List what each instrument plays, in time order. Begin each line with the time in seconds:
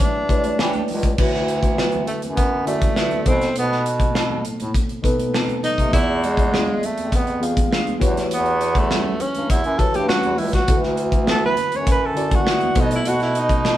Already playing: reed electric piano A3 E4 G4 B4 D5 E5
0.00 tenor saxophone D4, kick, closed hi-hat, muted conga, low conga
0.15 muted conga
0.29 reed electric piano A3 E4 G4 B4 C#5, kick, closed hi-hat
0.37 reed electric piano D5
0.44 closed hi-hat, high conga
0.59 bass clarinet E3, clean electric guitar A3 D4 G4, snare
0.73 closed hi-hat, muted conga, high conga
0.88 bass clarinet C#2, open hi-hat, low conga
1.03 kick, closed hi-hat
1.18 bass clarinet D2, reed electric piano D3 D4 E4 F#4 B4, kick, crash, muted conga
1.34 snare, muted conga
1.48 closed hi-hat
1.63 kick, closed hi-hat, high conga
1.78 clean electric guitar F#3 B3 E4, snare
1.92 closed hi-hat, high conga, low conga
2.07 bass clarinet F#2, tenor saxophone A3, closed hi-hat
2.22 bass clarinet F#2, closed hi-hat, high conga
2.36 tenor saxophone B3, kick, closed hi-hat, muted conga
2.65 reed electric piano D3 D4 E4 F#4 D5, tenor saxophone A3, closed hi-hat
2.82 kick, closed hi-hat, high conga
2.96 clean electric guitar F#3 B3 E4, snare
3.11 closed hi-hat, muted conga, high conga
3.24 reed electric piano B2 B3 D#4 A4 C5, bass clarinet B2, tenor saxophone C4, kick, closed hi-hat, low conga
3.41 snare, closed hi-hat, high conga
3.56 bass clarinet B2, tenor saxophone B3, closed hi-hat, muted conga
3.71 snare, muted conga
3.86 closed hi-hat
4.00 kick, closed hi-hat, high conga
4.14 clean electric guitar C4 D#4 A4, snare, muted conga
4.30 high conga, low conga
4.45 bass clarinet A2, closed hi-hat
4.60 bass clarinet A2, closed hi-hat, high conga
4.74 kick, closed hi-hat
4.89 closed hi-hat
5.02 reed electric piano B2 B3 D#4 A4 B4, kick, closed hi-hat
5.18 closed hi-hat, high conga
5.34 clean electric guitar C4 D#4 A4, snare, muted conga
5.48 closed hi-hat, high conga
5.63 bass clarinet C3, tenor saxophone D#4, closed hi-hat, low conga
5.78 bass clarinet C3, kick, closed hi-hat, high conga
5.91 bass clarinet E2, reed electric piano E3 B3 F4 G#4 D5, tenor saxophone E4, kick, closed hi-hat
6.08 muted conga
6.24 tenor saxophone G#3, closed hi-hat
6.37 kick, closed hi-hat, high conga
6.52 clean electric guitar G#3 D4 F4, snare
6.67 high conga, low conga
6.83 bass clarinet F2, tenor saxophone A3, closed hi-hat
6.97 bass clarinet F2, closed hi-hat, high conga
7.12 kick, closed hi-hat
7.16 tenor saxophone B3
7.27 closed hi-hat
7.40 reed electric piano E3 B3 F4 G#4 F5, closed hi-hat
7.57 kick, closed hi-hat, high conga
7.71 clean electric guitar G#3 D4 F4, snare, muted conga
7.87 closed hi-hat, high conga
7.99 bass clarinet E2, reed electric piano E3 E4 F#4 G4 B4 C#5, kick, closed hi-hat
8.03 low conga
8.17 snare, closed hi-hat, high conga
8.31 bass clarinet E2, tenor saxophone B3, closed hi-hat, muted conga
8.46 closed hi-hat
8.61 closed hi-hat
8.75 tenor saxophone A3, kick, closed hi-hat, high conga
8.90 clean electric guitar G3 C#4 F#4, snare, muted conga
9.05 muted conga, high conga, low conga
9.20 bass clarinet G2, tenor saxophone C#4, closed hi-hat
9.35 bass clarinet G2, closed hi-hat, high conga
9.50 bass clarinet E2, tenor saxophone E4, kick, closed hi-hat, muted conga
9.64 bass clarinet F#2, closed hi-hat, muted conga
9.79 reed electric piano E3 E4 F#4 G4 B4 C#5, tenor saxophone A4, kick, closed hi-hat
9.94 bass clarinet G2, tenor saxophone G4, closed hi-hat, high conga
10.08 clean electric guitar G3 C#4 F#4, tenor saxophone F#4, snare
10.23 bass clarinet E2, closed hi-hat, muted conga, high conga
10.38 bass clarinet C#2, tenor saxophone E4, open hi-hat, low conga
10.53 tenor saxophone F#4, kick, snare, closed hi-hat, high conga
10.68 bass clarinet D2, reed electric piano D3 D4 E4 F#4 A4, kick, closed hi-hat
10.77 reed electric piano B4
10.83 snare, muted conga
10.97 closed hi-hat
11.12 kick, closed hi-hat, high conga
11.27 clean electric guitar B3 E4 F#4, tenor saxophone A4, snare, muted conga
11.44 tenor saxophone B4, high conga, low conga
11.57 bass clarinet F#2, closed hi-hat
11.71 bass clarinet F#2, closed hi-hat, high conga
11.76 tenor saxophone C#5
11.87 kick, closed hi-hat
11.91 tenor saxophone B4
12.06 tenor saxophone A4
12.14 reed electric piano D3 D4 E4 F#4 D5, closed hi-hat
12.31 kick, closed hi-hat, high conga
12.35 tenor saxophone F#4
12.46 clean electric guitar B3 E4 F#4, snare
12.61 closed hi-hat, muted conga, high conga
12.75 reed electric piano B2 B3 D#4 A4 C5, bass clarinet B2, kick, closed hi-hat, low conga
12.80 tenor saxophone D#4
12.91 closed hi-hat, high conga
12.95 tenor saxophone E4
13.05 bass clarinet B2, tenor saxophone F#4, closed hi-hat, muted conga
13.20 tenor saxophone E4, snare, closed hi-hat
13.35 tenor saxophone D#4, closed hi-hat
13.49 kick, closed hi-hat, high conga
13.64 clean electric guitar C4 D#4 A4, snare, muted conga